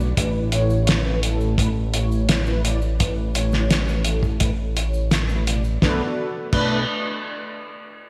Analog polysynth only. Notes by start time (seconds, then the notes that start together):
0.17 A2 A3 E4 B4
0.52 A2 A3 E4 C#5
1.05 A2 A3 E4 B4
1.23 A2 A3 E4 A4
1.58 A2 A3 E4 B4
1.94 A2 A3 E4 C#5
2.47 A2 A3 E4 B4
2.64 A2 A3 E4 D5
3.00 A2 A3 E4 B4
3.35 A2 A3 E4 C#5
3.88 A2 A3 E4 B4
4.05 A2 A3 E4 A4
4.41 A2 A3 E4 B4
4.76 A2 A3 E4 C#5
5.29 A2 A3 E4 B4
5.47 B2 A3 E4 D5
5.82 A3 D4 B4
6.52 A3 D4 B4